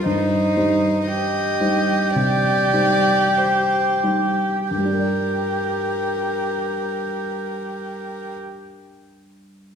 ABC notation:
X:1
M:4/4
L:1/8
Q:1/4=47
K:Gm
V:1 name="Violin"
c2 e2 d2 c z | B8 |]
V:2 name="Cello"
E2 G6 | G8 |]
V:3 name="Grand piano"
G,, [G,Ec]2 [G,Ec] C, [G,Ec]2 [G,Ec] | [G,,G,DBd]8 |]